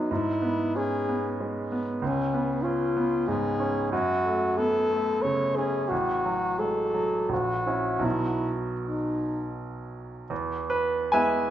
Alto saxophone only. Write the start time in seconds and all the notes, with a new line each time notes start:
Already playing: D#4
0.12 E4
0.76 G#4
2.02 C#4
2.63 F4
3.28 G#4
3.91 F#4
4.57 A4
5.22 C#5
5.56 G#4
5.89 F#4
6.59 A4
7.31 F#4
8.05 E4
8.81 D#4